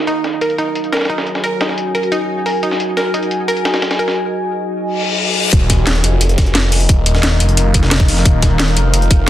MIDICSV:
0, 0, Header, 1, 6, 480
1, 0, Start_track
1, 0, Key_signature, -6, "minor"
1, 0, Tempo, 340909
1, 101, Time_signature, 4, 2, 24, 8
1, 13090, End_track
2, 0, Start_track
2, 0, Title_t, "Ambient pad"
2, 0, Program_c, 0, 92
2, 102, Note_on_c, 0, 66, 81
2, 102, Note_on_c, 0, 73, 75
2, 103, Note_on_c, 0, 80, 88
2, 3904, Note_off_c, 0, 73, 0
2, 3942, Note_on_c, 0, 75, 74
2, 7726, Note_off_c, 0, 66, 0
2, 7726, Note_off_c, 0, 80, 0
2, 7743, Note_off_c, 0, 75, 0
2, 7782, Note_on_c, 0, 63, 78
2, 7782, Note_on_c, 0, 77, 89
2, 7783, Note_on_c, 0, 70, 75
2, 13090, Note_off_c, 0, 63, 0
2, 13090, Note_off_c, 0, 70, 0
2, 13090, Note_off_c, 0, 77, 0
2, 13090, End_track
3, 0, Start_track
3, 0, Title_t, "Synth arpeggio sound"
3, 0, Program_c, 1, 84
3, 103, Note_on_c, 1, 63, 83
3, 155, Note_off_c, 1, 63, 0
3, 583, Note_on_c, 1, 70, 73
3, 635, Note_off_c, 1, 70, 0
3, 823, Note_on_c, 1, 63, 74
3, 875, Note_off_c, 1, 63, 0
3, 1303, Note_on_c, 1, 70, 76
3, 1355, Note_off_c, 1, 70, 0
3, 1542, Note_on_c, 1, 63, 70
3, 1594, Note_off_c, 1, 63, 0
3, 2023, Note_on_c, 1, 70, 79
3, 2074, Note_off_c, 1, 70, 0
3, 2262, Note_on_c, 1, 63, 72
3, 2314, Note_off_c, 1, 63, 0
3, 2742, Note_on_c, 1, 70, 73
3, 2794, Note_off_c, 1, 70, 0
3, 2982, Note_on_c, 1, 63, 83
3, 3034, Note_off_c, 1, 63, 0
3, 3462, Note_on_c, 1, 70, 67
3, 3514, Note_off_c, 1, 70, 0
3, 3702, Note_on_c, 1, 63, 75
3, 3754, Note_off_c, 1, 63, 0
3, 4181, Note_on_c, 1, 70, 77
3, 4234, Note_off_c, 1, 70, 0
3, 4421, Note_on_c, 1, 63, 69
3, 4474, Note_off_c, 1, 63, 0
3, 4902, Note_on_c, 1, 70, 81
3, 4954, Note_off_c, 1, 70, 0
3, 5141, Note_on_c, 1, 63, 72
3, 5194, Note_off_c, 1, 63, 0
3, 5621, Note_on_c, 1, 70, 74
3, 5674, Note_off_c, 1, 70, 0
3, 13090, End_track
4, 0, Start_track
4, 0, Title_t, "Detuned saw bass"
4, 0, Program_c, 2, 39
4, 7782, Note_on_c, 2, 27, 93
4, 8483, Note_off_c, 2, 27, 0
4, 8502, Note_on_c, 2, 29, 98
4, 8963, Note_off_c, 2, 29, 0
4, 8982, Note_on_c, 2, 29, 92
4, 9683, Note_off_c, 2, 29, 0
4, 9702, Note_on_c, 2, 27, 100
4, 10403, Note_off_c, 2, 27, 0
4, 10423, Note_on_c, 2, 29, 96
4, 10883, Note_off_c, 2, 29, 0
4, 10902, Note_on_c, 2, 29, 99
4, 11603, Note_off_c, 2, 29, 0
4, 11622, Note_on_c, 2, 27, 93
4, 12323, Note_off_c, 2, 27, 0
4, 12342, Note_on_c, 2, 29, 99
4, 12803, Note_off_c, 2, 29, 0
4, 12822, Note_on_c, 2, 29, 98
4, 13090, Note_off_c, 2, 29, 0
4, 13090, End_track
5, 0, Start_track
5, 0, Title_t, "Reverse cymbal"
5, 0, Program_c, 3, 119
5, 6821, Note_on_c, 3, 60, 73
5, 7782, Note_off_c, 3, 60, 0
5, 13090, End_track
6, 0, Start_track
6, 0, Title_t, "Drums"
6, 102, Note_on_c, 9, 42, 88
6, 242, Note_off_c, 9, 42, 0
6, 342, Note_on_c, 9, 38, 49
6, 342, Note_on_c, 9, 42, 60
6, 483, Note_off_c, 9, 38, 0
6, 483, Note_off_c, 9, 42, 0
6, 582, Note_on_c, 9, 42, 86
6, 703, Note_off_c, 9, 42, 0
6, 703, Note_on_c, 9, 42, 42
6, 822, Note_off_c, 9, 42, 0
6, 822, Note_on_c, 9, 42, 73
6, 963, Note_off_c, 9, 42, 0
6, 1062, Note_on_c, 9, 42, 86
6, 1182, Note_off_c, 9, 42, 0
6, 1182, Note_on_c, 9, 42, 40
6, 1302, Note_off_c, 9, 42, 0
6, 1302, Note_on_c, 9, 38, 84
6, 1302, Note_on_c, 9, 42, 65
6, 1362, Note_off_c, 9, 38, 0
6, 1362, Note_off_c, 9, 42, 0
6, 1362, Note_on_c, 9, 38, 84
6, 1362, Note_on_c, 9, 42, 64
6, 1422, Note_off_c, 9, 38, 0
6, 1422, Note_off_c, 9, 42, 0
6, 1422, Note_on_c, 9, 38, 83
6, 1422, Note_on_c, 9, 42, 63
6, 1482, Note_off_c, 9, 38, 0
6, 1482, Note_off_c, 9, 42, 0
6, 1482, Note_on_c, 9, 38, 82
6, 1482, Note_on_c, 9, 42, 64
6, 1542, Note_off_c, 9, 42, 0
6, 1542, Note_on_c, 9, 42, 83
6, 1623, Note_off_c, 9, 38, 0
6, 1662, Note_on_c, 9, 38, 59
6, 1683, Note_off_c, 9, 42, 0
6, 1783, Note_on_c, 9, 42, 61
6, 1803, Note_off_c, 9, 38, 0
6, 1903, Note_on_c, 9, 38, 52
6, 1924, Note_off_c, 9, 42, 0
6, 2022, Note_on_c, 9, 42, 85
6, 2044, Note_off_c, 9, 38, 0
6, 2163, Note_off_c, 9, 42, 0
6, 2263, Note_on_c, 9, 38, 96
6, 2263, Note_on_c, 9, 42, 72
6, 2382, Note_off_c, 9, 38, 0
6, 2382, Note_on_c, 9, 38, 49
6, 2403, Note_off_c, 9, 42, 0
6, 2502, Note_on_c, 9, 42, 89
6, 2523, Note_off_c, 9, 38, 0
6, 2643, Note_off_c, 9, 42, 0
6, 2742, Note_on_c, 9, 42, 69
6, 2861, Note_off_c, 9, 42, 0
6, 2861, Note_on_c, 9, 42, 41
6, 2981, Note_off_c, 9, 42, 0
6, 2981, Note_on_c, 9, 42, 89
6, 3122, Note_off_c, 9, 42, 0
6, 3462, Note_on_c, 9, 46, 78
6, 3603, Note_off_c, 9, 46, 0
6, 3702, Note_on_c, 9, 42, 65
6, 3821, Note_on_c, 9, 38, 39
6, 3843, Note_off_c, 9, 42, 0
6, 3942, Note_on_c, 9, 42, 86
6, 3962, Note_off_c, 9, 38, 0
6, 4083, Note_off_c, 9, 42, 0
6, 4182, Note_on_c, 9, 38, 49
6, 4182, Note_on_c, 9, 42, 61
6, 4323, Note_off_c, 9, 38, 0
6, 4323, Note_off_c, 9, 42, 0
6, 4422, Note_on_c, 9, 42, 89
6, 4542, Note_off_c, 9, 42, 0
6, 4542, Note_on_c, 9, 42, 44
6, 4662, Note_off_c, 9, 42, 0
6, 4662, Note_on_c, 9, 42, 71
6, 4803, Note_off_c, 9, 42, 0
6, 4902, Note_on_c, 9, 42, 85
6, 5022, Note_off_c, 9, 42, 0
6, 5022, Note_on_c, 9, 42, 42
6, 5142, Note_off_c, 9, 42, 0
6, 5142, Note_on_c, 9, 38, 101
6, 5142, Note_on_c, 9, 42, 79
6, 5262, Note_off_c, 9, 38, 0
6, 5262, Note_off_c, 9, 42, 0
6, 5262, Note_on_c, 9, 38, 99
6, 5262, Note_on_c, 9, 42, 76
6, 5381, Note_off_c, 9, 38, 0
6, 5381, Note_off_c, 9, 42, 0
6, 5381, Note_on_c, 9, 38, 100
6, 5381, Note_on_c, 9, 42, 74
6, 5502, Note_off_c, 9, 38, 0
6, 5502, Note_off_c, 9, 42, 0
6, 5502, Note_on_c, 9, 38, 106
6, 5502, Note_on_c, 9, 42, 76
6, 5622, Note_off_c, 9, 42, 0
6, 5622, Note_on_c, 9, 42, 64
6, 5643, Note_off_c, 9, 38, 0
6, 5742, Note_on_c, 9, 38, 50
6, 5763, Note_off_c, 9, 42, 0
6, 5882, Note_off_c, 9, 38, 0
6, 7782, Note_on_c, 9, 36, 125
6, 7782, Note_on_c, 9, 42, 83
6, 7783, Note_off_c, 9, 42, 0
6, 7783, Note_on_c, 9, 42, 93
6, 7923, Note_off_c, 9, 36, 0
6, 7923, Note_off_c, 9, 42, 0
6, 8022, Note_on_c, 9, 36, 64
6, 8022, Note_on_c, 9, 42, 94
6, 8023, Note_off_c, 9, 42, 0
6, 8023, Note_on_c, 9, 38, 50
6, 8023, Note_on_c, 9, 42, 66
6, 8163, Note_off_c, 9, 36, 0
6, 8163, Note_off_c, 9, 38, 0
6, 8163, Note_off_c, 9, 42, 0
6, 8262, Note_on_c, 9, 38, 118
6, 8262, Note_on_c, 9, 42, 90
6, 8382, Note_off_c, 9, 42, 0
6, 8382, Note_on_c, 9, 42, 44
6, 8403, Note_off_c, 9, 38, 0
6, 8502, Note_off_c, 9, 42, 0
6, 8502, Note_on_c, 9, 42, 98
6, 8643, Note_off_c, 9, 42, 0
6, 8742, Note_on_c, 9, 42, 80
6, 8862, Note_off_c, 9, 42, 0
6, 8862, Note_on_c, 9, 42, 45
6, 8982, Note_off_c, 9, 42, 0
6, 8982, Note_on_c, 9, 36, 116
6, 8982, Note_on_c, 9, 38, 106
6, 8982, Note_on_c, 9, 42, 102
6, 9102, Note_off_c, 9, 42, 0
6, 9102, Note_on_c, 9, 42, 39
6, 9123, Note_off_c, 9, 36, 0
6, 9123, Note_off_c, 9, 38, 0
6, 9222, Note_off_c, 9, 42, 0
6, 9222, Note_on_c, 9, 38, 122
6, 9222, Note_on_c, 9, 42, 81
6, 9363, Note_off_c, 9, 38, 0
6, 9363, Note_off_c, 9, 42, 0
6, 9461, Note_on_c, 9, 42, 82
6, 9462, Note_on_c, 9, 46, 83
6, 9582, Note_off_c, 9, 42, 0
6, 9582, Note_on_c, 9, 42, 43
6, 9603, Note_off_c, 9, 46, 0
6, 9702, Note_off_c, 9, 42, 0
6, 9702, Note_on_c, 9, 36, 127
6, 9702, Note_on_c, 9, 42, 87
6, 9843, Note_off_c, 9, 36, 0
6, 9843, Note_off_c, 9, 42, 0
6, 9941, Note_on_c, 9, 42, 64
6, 9942, Note_off_c, 9, 42, 0
6, 9942, Note_on_c, 9, 42, 96
6, 10061, Note_on_c, 9, 38, 54
6, 10083, Note_off_c, 9, 42, 0
6, 10182, Note_off_c, 9, 38, 0
6, 10182, Note_on_c, 9, 38, 118
6, 10182, Note_on_c, 9, 42, 83
6, 10323, Note_off_c, 9, 38, 0
6, 10323, Note_off_c, 9, 42, 0
6, 10422, Note_on_c, 9, 42, 101
6, 10542, Note_off_c, 9, 42, 0
6, 10542, Note_on_c, 9, 42, 45
6, 10662, Note_off_c, 9, 42, 0
6, 10662, Note_on_c, 9, 42, 83
6, 10803, Note_off_c, 9, 42, 0
6, 10901, Note_on_c, 9, 42, 67
6, 10902, Note_off_c, 9, 42, 0
6, 10902, Note_on_c, 9, 36, 65
6, 10902, Note_on_c, 9, 42, 103
6, 11022, Note_on_c, 9, 38, 56
6, 11043, Note_off_c, 9, 36, 0
6, 11043, Note_off_c, 9, 42, 0
6, 11141, Note_off_c, 9, 38, 0
6, 11141, Note_on_c, 9, 38, 116
6, 11141, Note_on_c, 9, 46, 84
6, 11142, Note_off_c, 9, 38, 0
6, 11142, Note_on_c, 9, 38, 121
6, 11142, Note_on_c, 9, 42, 85
6, 11262, Note_on_c, 9, 36, 112
6, 11282, Note_off_c, 9, 46, 0
6, 11283, Note_off_c, 9, 38, 0
6, 11283, Note_off_c, 9, 42, 0
6, 11382, Note_on_c, 9, 42, 66
6, 11382, Note_on_c, 9, 46, 79
6, 11403, Note_off_c, 9, 36, 0
6, 11502, Note_on_c, 9, 38, 41
6, 11522, Note_off_c, 9, 42, 0
6, 11523, Note_off_c, 9, 46, 0
6, 11622, Note_on_c, 9, 36, 123
6, 11622, Note_on_c, 9, 42, 80
6, 11643, Note_off_c, 9, 38, 0
6, 11763, Note_off_c, 9, 36, 0
6, 11763, Note_off_c, 9, 42, 0
6, 11861, Note_on_c, 9, 38, 51
6, 11861, Note_on_c, 9, 42, 64
6, 11862, Note_off_c, 9, 42, 0
6, 11862, Note_on_c, 9, 36, 65
6, 11862, Note_on_c, 9, 42, 91
6, 12002, Note_off_c, 9, 38, 0
6, 12003, Note_off_c, 9, 36, 0
6, 12003, Note_off_c, 9, 42, 0
6, 12101, Note_on_c, 9, 38, 119
6, 12101, Note_on_c, 9, 42, 93
6, 12102, Note_off_c, 9, 38, 0
6, 12102, Note_off_c, 9, 42, 0
6, 12102, Note_on_c, 9, 38, 127
6, 12102, Note_on_c, 9, 42, 81
6, 12221, Note_off_c, 9, 42, 0
6, 12221, Note_on_c, 9, 42, 45
6, 12243, Note_off_c, 9, 38, 0
6, 12341, Note_off_c, 9, 42, 0
6, 12341, Note_on_c, 9, 42, 72
6, 12342, Note_off_c, 9, 42, 0
6, 12342, Note_on_c, 9, 42, 99
6, 12483, Note_off_c, 9, 42, 0
6, 12581, Note_on_c, 9, 42, 90
6, 12582, Note_off_c, 9, 42, 0
6, 12582, Note_on_c, 9, 42, 83
6, 12701, Note_off_c, 9, 42, 0
6, 12701, Note_on_c, 9, 42, 44
6, 12822, Note_off_c, 9, 42, 0
6, 12822, Note_on_c, 9, 36, 115
6, 12822, Note_on_c, 9, 42, 102
6, 12962, Note_off_c, 9, 42, 0
6, 12963, Note_off_c, 9, 36, 0
6, 13090, End_track
0, 0, End_of_file